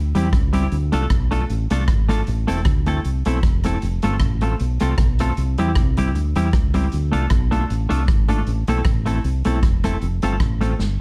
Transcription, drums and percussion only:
0.15 closed hi-hat
0.33 kick, cross-stick, closed hi-hat
0.53 closed hi-hat
0.72 closed hi-hat
0.92 closed hi-hat
1.10 kick, cross-stick, closed hi-hat
1.31 closed hi-hat
1.50 closed hi-hat
1.70 closed hi-hat
1.88 kick, cross-stick, closed hi-hat
2.09 cross-stick, closed hi-hat
2.27 closed hi-hat
2.48 closed hi-hat
2.65 kick, cross-stick, closed hi-hat
2.86 closed hi-hat
3.05 closed hi-hat
3.25 closed hi-hat
3.43 kick, cross-stick, closed hi-hat
3.64 cross-stick, closed hi-hat
3.82 closed hi-hat
4.02 closed hi-hat
4.20 kick, cross-stick, closed hi-hat
4.41 closed hi-hat
4.60 closed hi-hat
4.80 closed hi-hat
4.98 kick, cross-stick, closed hi-hat
5.19 closed hi-hat
5.37 closed hi-hat
5.58 closed hi-hat
5.75 kick, cross-stick, closed hi-hat
5.97 closed hi-hat
6.15 closed hi-hat
6.35 closed hi-hat
6.53 kick, cross-stick, closed hi-hat
6.74 closed hi-hat
6.92 closed hi-hat
7.13 closed hi-hat
7.30 kick, cross-stick, closed hi-hat
7.52 closed hi-hat
7.70 closed hi-hat
7.90 closed hi-hat
8.08 kick, cross-stick, closed hi-hat
8.28 closed hi-hat
8.47 closed hi-hat
8.67 closed hi-hat
8.85 kick, cross-stick, closed hi-hat
9.06 closed hi-hat
9.24 closed hi-hat
9.45 closed hi-hat
9.63 kick, cross-stick, closed hi-hat
9.84 cross-stick, closed hi-hat
10.02 closed hi-hat
10.22 closed hi-hat
10.40 kick, cross-stick, closed hi-hat
10.61 closed hi-hat
10.79 snare

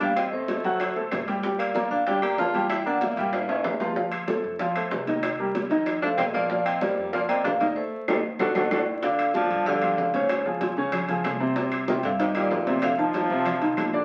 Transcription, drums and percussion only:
0.01 high conga, high timbale
0.16 high bongo, high conga, high timbale, claves
0.33 high conga
0.48 high bongo, high conga, high timbale, low timbale
0.64 high bongo, high conga, high timbale
0.80 high bongo, high conga, high timbale, claves
0.96 high bongo, high conga
1.11 high bongo, low bongo, high conga, high timbale, low timbale, claves
1.28 high bongo, high conga, high timbale
1.43 high bongo, high conga
1.59 high conga, high timbale, claves
1.75 high bongo, high conga, high timbale, low timbale
1.91 high conga
2.07 high bongo, high conga, high timbale
2.22 high conga, high timbale, claves
2.38 high bongo, low bongo, high conga, low timbale
2.54 high conga, high timbale
2.70 high bongo, high conga, high timbale, claves
2.86 high conga
3.01 high bongo, high conga, high timbale, low timbale
3.17 high bongo, high conga, high timbale
3.33 high bongo, high conga, high timbale, claves
3.49 high bongo, high conga, high timbale
3.64 high bongo, low bongo, high conga, low timbale, claves
3.80 high bongo, high conga, low timbale
3.96 high bongo, high conga
4.11 high conga, high timbale, claves
4.28 high bongo, high conga, high timbale, low timbale
4.44 high conga
4.59 high bongo, high conga, high timbale
4.75 high conga, high timbale, claves
4.91 high bongo, low bongo, high conga, low timbale
5.07 high conga, high timbale
5.23 high bongo, high conga, high timbale, claves
5.39 high conga
5.55 high bongo, high conga, high timbale, low timbale
5.71 high bongo, high conga, high timbale
5.86 high bongo, high conga, high timbale, claves
6.02 high bongo, high conga
6.18 high bongo, low bongo, high conga, high timbale, low timbale, claves
6.34 high bongo, high conga, high timbale
6.50 high bongo, high conga
6.66 high conga, high timbale, claves
6.81 high bongo, high conga, high timbale, low timbale
6.98 high conga
7.13 high bongo, high conga, high timbale
7.29 high conga, high timbale, claves
7.45 high bongo, low bongo, high conga, low timbale
7.61 high conga, high timbale
8.08 high bongo, high conga, high timbale, claves
8.39 high bongo, high conga, high timbale, claves
8.55 high bongo, high conga, high timbale, claves
8.71 high bongo, high conga, high timbale, claves
9.03 high bongo, high conga, high timbale
9.19 high bongo, high conga, high timbale, claves
9.34 high bongo, high conga
9.51 high conga, high timbale
9.66 high bongo, high conga, high timbale
9.82 high bongo, high conga, high timbale, claves
9.98 high bongo, low bongo, high conga
10.14 high bongo, high conga, high timbale
10.29 high bongo, high conga, high timbale, claves
10.45 high bongo, high conga
10.61 high bongo, high conga, high timbale
10.92 high bongo, high conga, low conga, high timbale, claves
11.08 high bongo, high conga, low conga, high timbale
11.24 high bongo, low bongo, high conga, high timbale, claves
11.40 high bongo
11.56 high bongo, high conga, high timbale
11.72 high bongo, high conga, high timbale, claves
11.88 high bongo, high conga
12.03 high conga, high timbale
12.20 high bongo, high timbale
12.35 high bongo, high conga, high timbale, claves
12.51 high bongo, low bongo, high conga, low timbale
12.67 high bongo, high conga, high timbale
12.82 high bongo, high timbale, claves
12.98 high bongo, high conga
13.14 high bongo, high conga, high timbale
13.45 high bongo, high conga, low conga, high timbale, claves
13.62 high bongo, high conga, high timbale
13.77 high bongo, low bongo, high conga, high timbale, claves
13.93 high bongo

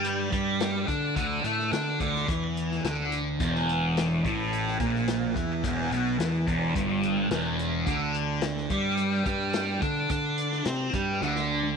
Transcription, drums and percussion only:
0.04 closed hi-hat
0.32 kick, closed hi-hat
0.60 snare, closed hi-hat
0.88 kick, closed hi-hat
1.16 kick, closed hi-hat
1.44 closed hi-hat
1.60 snare
1.73 snare, closed hi-hat
2.00 kick, closed hi-hat
2.16 snare
2.28 kick, closed hi-hat
2.57 closed hi-hat
2.71 snare
2.84 snare, closed hi-hat
3.12 closed hi-hat
3.40 kick, closed hi-hat
3.55 snare
3.69 closed hi-hat
3.97 snare, closed hi-hat
4.25 kick, closed hi-hat
4.53 closed hi-hat
4.67 snare
4.80 kick, closed hi-hat
4.95 snare
5.08 snare, closed hi-hat
5.36 kick, closed hi-hat
5.64 kick, closed hi-hat
5.92 closed hi-hat
6.20 snare, closed hi-hat
6.48 kick, closed hi-hat
6.75 kick, closed hi-hat
7.03 closed hi-hat
7.31 snare, closed hi-hat
7.59 closed hi-hat
7.87 kick, closed hi-hat
8.14 closed hi-hat
8.41 snare, closed hi-hat
8.57 snare
8.70 kick, closed hi-hat
8.97 closed hi-hat
9.26 kick, closed hi-hat
9.53 snare, closed hi-hat
9.82 kick, closed hi-hat
10.09 kick, closed hi-hat
10.38 closed hi-hat
10.52 snare
10.65 snare, closed hi-hat
10.93 kick, closed hi-hat
11.22 snare
11.36 snare
11.63 high tom

